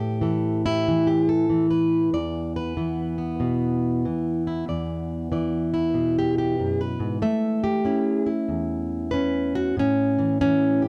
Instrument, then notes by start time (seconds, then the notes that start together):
steel-string acoustic guitar
Already playing: A2 E3 A4
0.00 G4
0.21 E3 A4
0.66 E4 G4
0.88 E3
1.07 G4
1.29 A4
1.50 E3
1.71 B4
2.13 E2 D5
2.56 B4
2.77 E3 B3
3.18 B3
3.40 B2
4.05 E3
4.47 E4
4.68 E2 D5
5.32 E3 D5
5.74 E4
5.94 B2
6.19 G4
6.38 G4
6.60 F#2
6.81 B4
7.00 G#2
7.22 A3 E5
7.64 G4
7.85 C#4 E4
8.26 E4
8.48 E2
9.11 C#4 B4
9.55 F#4
9.77 A2 C#4
10.19 E3
10.41 E3 C#4
10.82 G4